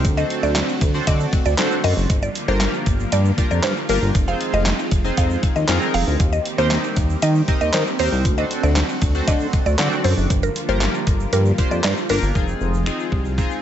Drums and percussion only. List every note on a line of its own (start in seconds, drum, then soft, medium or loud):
0.05 kick loud
0.05 closed hi-hat loud
0.05 shaker medium
0.17 shaker medium
0.30 closed hi-hat medium
0.43 shaker soft
0.56 snare medium
0.56 clap loud
0.56 closed hi-hat loud
0.56 shaker medium
0.69 shaker soft
0.81 kick loud
0.81 closed hi-hat medium
0.81 shaker medium
0.94 shaker soft
1.07 kick medium
1.07 closed hi-hat loud
1.07 shaker medium
1.20 shaker medium
1.33 kick medium
1.33 closed hi-hat medium
1.46 shaker medium
1.58 snare medium
1.58 clap loud
1.58 closed hi-hat medium
1.58 shaker medium
1.71 shaker soft
1.84 open hi-hat medium
1.84 shaker medium
1.97 shaker soft
2.10 kick loud
2.10 closed hi-hat loud
2.10 shaker medium
2.22 shaker medium
2.35 closed hi-hat medium
2.35 shaker medium
2.48 shaker soft
2.61 snare medium
2.61 clap loud
2.61 closed hi-hat loud
2.61 shaker medium
2.74 shaker medium
2.86 kick loud
2.86 closed hi-hat medium
2.86 shaker medium
3.00 shaker soft
3.12 closed hi-hat loud
3.12 shaker medium
3.25 shaker medium
3.38 kick medium
3.38 closed hi-hat medium
3.38 shaker medium
3.51 shaker soft
3.63 snare medium
3.63 clap loud
3.63 closed hi-hat medium
3.63 shaker medium
3.76 shaker soft
3.89 open hi-hat medium
3.89 shaker medium
4.02 shaker soft
4.15 kick loud
4.15 closed hi-hat medium
4.15 shaker medium
4.28 shaker medium
4.41 closed hi-hat medium
4.53 shaker soft
4.66 snare medium
4.66 clap loud
4.66 closed hi-hat loud
4.66 shaker medium
4.79 shaker soft
4.91 kick loud
4.91 closed hi-hat medium
4.91 shaker medium
5.05 shaker soft
5.17 kick medium
5.17 closed hi-hat loud
5.17 shaker medium
5.30 shaker medium
5.43 kick medium
5.43 closed hi-hat medium
5.56 shaker medium
5.68 snare medium
5.68 clap loud
5.68 closed hi-hat medium
5.68 shaker medium
5.81 shaker soft
5.94 open hi-hat medium
5.94 shaker medium
6.07 shaker medium
6.20 kick loud
6.20 closed hi-hat loud
6.20 shaker medium
6.33 shaker medium
6.46 closed hi-hat medium
6.58 shaker soft
6.71 snare medium
6.71 clap loud
6.71 closed hi-hat loud
6.71 shaker medium
6.84 shaker soft
6.96 kick loud
6.96 closed hi-hat medium
6.96 shaker medium
7.10 shaker soft
7.22 closed hi-hat loud
7.22 shaker medium
7.35 shaker medium
7.48 kick loud
7.48 closed hi-hat medium
7.61 shaker medium
7.73 snare medium
7.73 clap loud
7.73 closed hi-hat medium
7.73 shaker medium
7.86 shaker soft
7.99 open hi-hat medium
7.99 shaker medium
8.12 shaker medium
8.25 kick loud
8.25 closed hi-hat loud
8.25 shaker medium
8.38 shaker medium
8.51 closed hi-hat medium
8.63 shaker soft
8.76 snare medium
8.76 clap loud
8.76 closed hi-hat loud
8.76 shaker medium
8.89 shaker soft
9.02 kick loud
9.02 closed hi-hat medium
9.02 shaker medium
9.15 shaker soft
9.28 kick medium
9.28 closed hi-hat loud
9.28 shaker medium
9.40 shaker medium
9.53 kick medium
9.53 closed hi-hat medium
9.66 shaker medium
9.79 snare medium
9.79 clap loud
9.79 closed hi-hat medium
9.79 shaker medium
9.91 shaker soft
10.04 open hi-hat medium
10.04 shaker medium
10.18 shaker soft
10.30 kick loud
10.30 closed hi-hat loud
10.30 shaker medium
10.43 shaker medium
10.56 closed hi-hat medium
10.56 shaker medium
10.69 shaker soft
10.81 snare medium
10.81 clap loud
10.81 closed hi-hat loud
10.81 shaker medium
10.94 shaker soft
11.07 kick loud
11.07 closed hi-hat medium
11.07 shaker medium
11.20 shaker soft
11.33 closed hi-hat loud
11.33 shaker medium
11.46 shaker medium
11.58 kick medium
11.58 closed hi-hat medium
11.58 shaker medium
11.71 shaker soft
11.84 snare loud
11.84 clap loud
11.84 closed hi-hat medium
11.84 shaker medium
11.97 shaker soft
12.09 open hi-hat medium
12.09 shaker medium
12.23 shaker medium
12.35 kick loud
12.35 shaker medium
12.48 shaker soft
12.61 shaker medium
12.74 shaker soft
12.86 finger snap loud
12.86 shaker medium
12.99 shaker soft
13.12 kick loud
13.25 shaker soft
13.38 kick medium
13.38 shaker medium
13.51 shaker medium